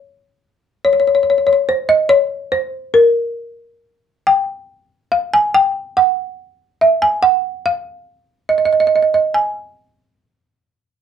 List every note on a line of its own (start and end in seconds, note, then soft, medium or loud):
0.00 0.38 C#5 medium
0.85 0.92 C#5 loud
0.93 0.99 C#5 medium
1.00 1.06 C#5 medium
1.08 1.14 C#5 medium
1.15 1.22 C#5 medium
1.23 1.29 C#5 medium
1.30 1.37 C#5 medium
1.38 1.45 C#5 medium
1.47 1.52 C#5 medium
1.53 1.60 C#5 medium
1.69 1.89 C5 loud
1.89 2.12 D#5 loud
2.09 2.54 C#5 loud
2.52 2.97 C5 loud
2.94 3.77 A#4 medium
4.27 5.13 G5 loud
5.12 5.33 F5 loud
5.34 5.54 G#5 loud
5.54 5.97 G5 loud
5.97 6.84 F#5 loud
6.81 7.01 E5 loud
7.02 7.21 G#5 loud
7.23 7.66 F#5 loud
7.66 8.53 F5 loud
8.49 8.57 D#5 medium
8.58 8.64 D#5 medium
8.65 8.71 D#5 medium
8.73 8.79 D#5 medium
8.80 8.86 D#5 medium
8.87 8.94 D#5 medium
8.96 9.01 D#5 medium
9.03 9.10 D#5 medium
9.14 9.36 D#5 medium
9.34 10.80 G#5 loud